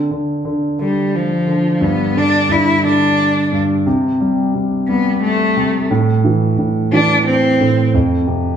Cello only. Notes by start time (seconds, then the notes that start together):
0.81 G3
1.15 F3
1.83 B3
2.18 D4
2.52 E4
2.86 D4
4.88 B3
5.22 A3
6.92 D4
7.26 C4